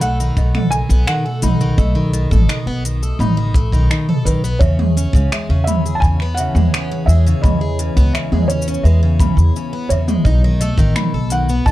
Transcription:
Already playing: upright bass B1, ambient pad B2 A4 C#5, celesta B5
0.01 twelve-string acoustic guitar A3, felt piano F#5, closed hi-hat, shaker
0.20 twelve-string acoustic guitar D#3, shaker
0.37 upright bass B1, twelve-string acoustic guitar D#3, celesta D#5, kick, shaker
0.55 twelve-string acoustic guitar A4, finger snap, mid tom
0.71 twelve-string acoustic guitar D#3, felt piano G#5, closed hi-hat, shaker
0.89 upright bass B1, twelve-string acoustic guitar B3, shaker
1.07 twelve-string acoustic guitar D#3, felt piano F#5, finger snap, shaker
1.26 twelve-string acoustic guitar A3
1.42 upright bass B1, twelve-string acoustic guitar D#4, celesta B5, closed hi-hat, mid tom, shaker
1.52 ambient pad D#6
1.61 twelve-string acoustic guitar D#3, shaker
1.78 upright bass B1, twelve-string acoustic guitar A3, felt piano D#5, kick, shaker
1.95 twelve-string acoustic guitar D#3
2.13 twelve-string acoustic guitar D#3, celesta D#5, closed hi-hat, shaker
2.31 upright bass A1, twelve-string acoustic guitar A4, kick, mid tom, shaker
2.49 twelve-string acoustic guitar D#3, finger snap, shaker
2.66 upright bass B1, twelve-string acoustic guitar B3
2.85 twelve-string acoustic guitar D#3, closed hi-hat, shaker
3.03 twelve-string acoustic guitar A3, shaker
3.19 upright bass A1, twelve-string acoustic guitar D#4, celesta B5, mid tom, shaker
3.37 twelve-string acoustic guitar D#3
3.54 twelve-string acoustic guitar A3, kick, closed hi-hat
3.72 upright bass B1, twelve-string acoustic guitar D#3, kick, shaker
3.90 twelve-string acoustic guitar D#3, celesta D#5, finger snap, shaker
4.09 twelve-string acoustic guitar A4, mid tom
4.25 upright bass B1, twelve-string acoustic guitar D#3, felt piano B4, closed hi-hat, shaker
4.44 twelve-string acoustic guitar B3, shaker
4.59 upright bass E2, twelve-string acoustic guitar C#3, ambient pad E3, felt piano C#5, celesta E5, kick, shaker
4.79 twelve-string acoustic guitar G#3, mid tom
4.84 ambient pad B3
4.95 twelve-string acoustic guitar C#4, ambient pad C#5, closed hi-hat, shaker
5.13 upright bass C#2, twelve-string acoustic guitar C#3, kick, shaker
5.32 twelve-string acoustic guitar G#3, celesta E5, finger snap, shaker
5.49 upright bass E2, twelve-string acoustic guitar C#3
5.64 felt piano E5, celesta B5, closed hi-hat, mid tom, shaker
5.68 twelve-string acoustic guitar C#3
5.78 ambient pad G#4
5.86 twelve-string acoustic guitar G#4, shaker
5.95 felt piano A5
6.00 upright bass E2, felt piano G#5, kick, shaker
6.05 twelve-string acoustic guitar C#3
6.20 twelve-string acoustic guitar B3, finger snap
6.35 celesta E5, felt piano F#5, closed hi-hat, shaker
6.40 twelve-string acoustic guitar C#3
6.55 upright bass E2, twelve-string acoustic guitar G#3, mid tom, shaker
6.74 twelve-string acoustic guitar C#4, finger snap, shaker
6.91 twelve-string acoustic guitar C#3
7.06 upright bass E2, twelve-string acoustic guitar G#3, felt piano E5, celesta E5, shaker
7.27 twelve-string acoustic guitar C#3, shaker
7.42 upright bass E2, twelve-string acoustic guitar C#3, felt piano D#5, celesta B5, kick, mid tom, shaker
7.61 twelve-string acoustic guitar G#4
7.79 twelve-string acoustic guitar C#3, closed hi-hat, shaker
7.97 upright bass C#2, twelve-string acoustic guitar B3, kick, shaker
8.13 twelve-string acoustic guitar C#3, celesta E5, finger snap, shaker
8.32 upright bass E2, twelve-string acoustic guitar G#3, mid tom
8.42 felt piano D#5
8.48 twelve-string acoustic guitar C#4, felt piano C#5, closed hi-hat, shaker
8.62 shaker
8.68 twelve-string acoustic guitar C#3, shaker
8.74 shaker
8.83 upright bass E2, twelve-string acoustic guitar G#3, felt piano B4, celesta E5, shaker
9.03 twelve-string acoustic guitar C#3
9.20 twelve-string acoustic guitar C#3, celesta B5, kick, closed hi-hat, mid tom, shaker
9.37 upright bass E2, twelve-string acoustic guitar G#4, shaker
9.56 twelve-string acoustic guitar C#3, shaker
9.73 twelve-string acoustic guitar B3
9.89 upright bass E2, twelve-string acoustic guitar C#3, felt piano C#5, celesta E5, closed hi-hat, shaker
10.08 twelve-string acoustic guitar G#3, mid tom, shaker
10.24 upright bass B1, ambient pad B2, twelve-string acoustic guitar D#4, felt piano D#5, kick, shaker
10.44 twelve-string acoustic guitar D#3
10.60 twelve-string acoustic guitar A3, celesta D#5, closed hi-hat, shaker
10.78 upright bass A1, twelve-string acoustic guitar D#3, kick, shaker
10.96 twelve-string acoustic guitar D#3, celesta B5, finger snap, mid tom, shaker
11.10 upright bass B1, ambient pad A4, twelve-string acoustic guitar A4
11.23 ambient pad D#5
11.30 twelve-string acoustic guitar D#3, felt piano F#5, closed hi-hat, shaker
11.49 twelve-string acoustic guitar B3, shaker
11.66 upright bass B1, twelve-string acoustic guitar D#3, celesta D#5, felt piano A5, kick, shaker

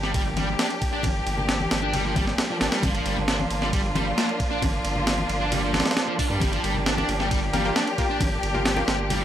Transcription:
Already playing: sub bass G1, string section F3 A#3 D4 G4
0.03 distorted electric guitar G3, snare
0.14 distorted electric guitar G3, kick, ride
0.37 distorted electric guitar G3, ride, high conga
0.59 distorted electric guitar D4, snare, ride
0.70 ride
0.82 kick, ride
0.93 distorted electric guitar D4
1.03 sub bass G1, kick, ride, high conga
1.26 sub bass G1, ride
1.38 low conga
1.49 snare, ride
1.60 high conga
1.71 sub bass G1, snare, ride
1.83 distorted electric guitar D4
1.94 distorted electric guitar G3, ride, low conga
2.05 distorted electric guitar F3
2.16 distorted electric guitar G3, kick, ride, high conga
2.27 snare
2.38 snare, ride
2.50 distorted electric guitar F3
2.61 sub bass G1, distorted electric guitar D4, snare, ride
2.72 distorted electric guitar G3, snare, ride
2.83 sub bass G1, distorted electric guitar G3, string section F4, kick, ride, high conga
2.95 distorted electric guitar F3, ride
3.06 sub bass G1, distorted electric guitar G3, ride
3.17 low conga
3.28 distorted electric guitar D4, snare, ride
3.40 high conga
3.50 sub bass G1, ride
3.62 distorted electric guitar G3, snare
3.73 distorted electric guitar G3, kick, ride
3.95 distorted electric guitar G3, ride, high conga
4.18 distorted electric guitar D4, snare, ride
4.29 ride
4.40 kick, ride
4.51 distorted electric guitar D4
4.62 sub bass G1, kick, ride, high conga
4.85 sub bass G1, ride
4.96 low conga
5.07 snare, ride
5.18 high conga
5.29 sub bass G1, ride
5.41 distorted electric guitar D4
5.52 distorted electric guitar G3, ride, low conga
5.63 distorted electric guitar F3
5.74 sub bass G1, distorted electric guitar G3, snare, ride, high conga
5.80 snare, ride
5.86 snare, ride
5.91 snare, ride
5.97 snare, ride
6.08 distorted electric guitar F3
6.19 distorted electric guitar D4, kick, open hi-hat
6.30 sub bass G2, distorted electric guitar G3
6.40 sub bass G1, distorted electric guitar G3, string section G4, kick, ride, high conga
6.53 distorted electric guitar F3, ride
6.63 sub bass G1, distorted electric guitar G3, ride
6.74 low conga
6.86 distorted electric guitar D4, snare, ride
6.98 distorted electric guitar D4, muted conga, high conga
7.08 sub bass G1, ride
7.20 distorted electric guitar G3, snare
7.31 distorted electric guitar G3, kick, ride
7.53 distorted electric guitar G3, synth stab A#3 F4 G4, ride, high conga
7.65 synth stab A#3 F4 G4
7.76 distorted electric guitar D4, snare, ride
7.87 ride
7.98 synth stab A#3 F4 G4, kick, ride
8.10 distorted electric guitar D4
8.21 sub bass G1, kick, ride, high conga
8.43 sub bass G1, ride
8.54 synth stab A#3 F4 G4, low conga
8.66 snare, ride
8.76 synth stab A#3 F4 G4, muted conga, high conga
8.88 sub bass G1, snare, ride
9.10 distorted electric guitar G3, ride, low conga
9.21 distorted electric guitar F3

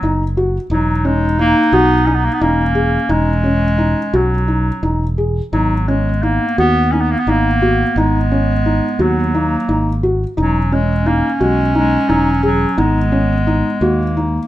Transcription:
Already playing: clarinet F#3 B3
0.03 fingered electric bass F#1, felt piano D#4
0.37 felt piano F#4
0.70 fingered electric bass E1, clarinet F#3 D#4, felt piano D#4
1.05 clarinet G#3, felt piano C#4
1.39 clarinet A#3, felt piano D#4
1.72 fingered electric bass B1, clarinet B3, felt piano F#4
2.06 clarinet C#4, felt piano D#4
2.15 clarinet B3
2.25 clarinet A#3
2.34 clarinet B3
2.41 fingered electric bass E1, clarinet A#3 C#4, felt piano D#4
2.75 felt piano G#4
3.09 fingered electric bass E1, clarinet G#3, felt piano D#4
3.44 felt piano C#4
3.78 felt piano D#4
4.14 fingered electric bass B1, clarinet F#3, felt piano F#4
4.48 felt piano D#4
4.83 fingered electric bass E1, felt piano D#4
5.18 felt piano G#4
5.52 fingered electric bass G#1, clarinet F#3 B3, felt piano D#4
5.88 clarinet G#3, felt piano C#4
6.23 clarinet A#3, felt piano D#4
6.58 fingered electric bass D#2, clarinet B3, felt piano F#4
6.91 clarinet C#4, felt piano D#4
7.01 clarinet B3
7.11 clarinet A#3
7.19 clarinet B3
7.27 fingered electric bass G#1, clarinet A#3, felt piano D#4
7.62 felt piano F#4
7.96 fingered electric bass G#1, clarinet G#3, felt piano D#4
8.32 felt piano C#4
8.66 felt piano D#4
8.99 fingered electric bass D#2, clarinet F#3, felt piano F#4
9.34 clarinet A#3, felt piano D#4
9.69 fingered electric bass G#1, felt piano D#4
10.03 felt piano F#4
10.37 fingered electric bass E1, clarinet F#3 C#4, felt piano D#4
10.72 clarinet G#3, felt piano C#4
11.06 clarinet A#3, felt piano D#4
11.34 clarinet A#3
11.40 fingered electric bass B1, clarinet G#3, felt piano F#4
11.75 clarinet G#3, felt piano D#4
12.09 fingered electric bass E1, clarinet F#3, felt piano D#4
12.43 clarinet F#3, felt piano G#4
12.78 fingered electric bass G#1, clarinet G#3 B3, felt piano D#4
13.12 felt piano C#4
13.47 felt piano D#4
13.81 fingered electric bass D#2, clarinet A#3, felt piano F#4
14.17 felt piano D#4

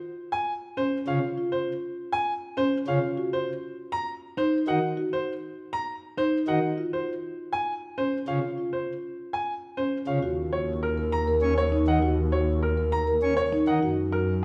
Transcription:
0.32 grand piano G#5
0.77 marimba C#4, grand piano C5
1.07 pipe organ C#3, marimba F4, grand piano F5
1.38 marimba F4
1.52 grand piano C5
2.12 grand piano G#5
2.57 marimba C#4, grand piano C5
2.87 pipe organ C#3, marimba F4, grand piano F5
3.17 marimba F#4
3.33 grand piano C5
3.92 grand piano A#5
4.37 marimba D#4, grand piano C5
4.67 pipe organ D#3, marimba F#4, grand piano F#5
4.97 marimba F#4
5.13 grand piano C5
5.73 grand piano A#5
6.17 marimba D#4, grand piano C5
6.48 pipe organ D#3, marimba F#4, grand piano F#5
6.78 marimba F4
6.93 grand piano C5
7.53 grand piano G#5
7.98 marimba C#4, grand piano C5
8.28 pipe organ C#3, marimba F4, grand piano F5
8.58 marimba F4
8.73 grand piano C5
9.33 grand piano G#5
9.77 marimba C#4, grand piano C5
10.07 pipe organ C#3, marimba F4, grand piano F5
10.22 double bass section D#2, marimba F#4
10.53 marimba F#4, grand piano C#5
10.83 grand piano A#4
10.97 marimba A#4
11.12 grand piano A#5
11.27 marimba A#4
11.42 pipe organ C#4
11.58 grand piano C#5
11.72 marimba D#4
11.87 pipe organ D#3, grand piano F#5
12.02 marimba F#4
12.32 marimba F#4, grand piano C#5
12.63 grand piano A#4
12.77 marimba A#4
12.92 grand piano A#5
13.07 marimba A#4
13.23 pipe organ C#4
13.37 grand piano C#5
13.53 marimba D#4
13.67 pipe organ D#3, grand piano F#5
13.82 double bass section F#2, marimba F#4
14.12 marimba F#4, grand piano A#4

